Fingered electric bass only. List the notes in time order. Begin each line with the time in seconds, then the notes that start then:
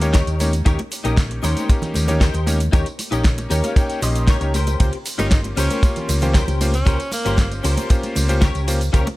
Already playing: D#2
0.27 D#2
0.66 D#2
1.05 A#1
1.43 D#2
1.95 D#2
2.34 D#2
2.73 D#2
3.12 A#1
3.51 D#2
4.02 A#1
4.41 C#2
4.80 C#2
5.19 G1
5.57 C#2
6.09 C#2
6.48 C#2
6.87 C#2
7.26 G1
7.64 C#2
8.16 C#2
8.55 C#2
8.94 C#2